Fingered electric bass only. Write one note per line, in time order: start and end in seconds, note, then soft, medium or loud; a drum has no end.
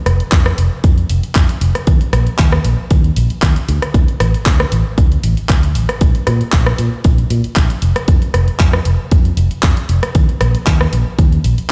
0.06 0.20 F1 loud
0.20 muted fingered electric bass stroke soft
0.32 0.51 F2 medium
0.58 0.68 F1 medium
0.84 1.02 F2 medium
1.10 1.19 F1 medium
1.24 muted fingered electric bass stroke soft
1.36 1.45 F2 medium
1.61 1.71 F1 medium
1.87 1.97 D#2 loud
2.13 2.26 A#1 loud
2.27 muted fingered electric bass stroke soft
2.39 2.57 D#2 medium
2.65 2.74 A#1 medium
2.91 3.09 D#2 medium
3.17 3.26 A#1 medium
3.30 muted fingered electric bass stroke soft
3.43 3.52 D#2 medium
3.69 3.78 D2 medium
3.94 4.04 D2 loud
4.20 4.34 A1 loud
4.34 muted fingered electric bass stroke soft
4.46 4.64 D2 medium
4.72 4.82 A1 medium
4.98 5.16 D2 medium
5.24 5.33 A1 medium
5.38 muted fingered electric bass stroke soft
5.49 5.76 D2 medium
5.76 5.85 A1 medium
6.01 6.11 A#1 medium
6.27 6.40 A#2 loud
6.41 muted fingered electric bass stroke soft
6.53 6.71 A#1 medium
6.79 6.88 A#2 medium
7.05 7.23 A#1 medium
7.31 7.40 A#2 medium
7.45 muted fingered electric bass stroke soft
7.56 7.66 A#1 medium
7.82 7.92 F1 medium
8.08 8.18 F2 loud
8.34 8.47 F1 loud
8.48 muted fingered electric bass stroke soft
8.60 8.78 F2 medium
8.86 8.95 F1 medium
9.12 9.30 F2 medium
9.37 9.47 F1 medium
9.51 muted fingered electric bass stroke soft
9.63 9.73 F2 medium
9.89 9.99 F1 medium
10.15 10.25 D#2 loud
10.41 10.54 A#1 loud
10.55 muted fingered electric bass stroke soft
10.67 10.85 D#2 medium
10.93 11.02 A#1 medium
11.18 11.37 D#2 medium
11.44 11.54 A#1 medium
11.58 muted fingered electric bass stroke soft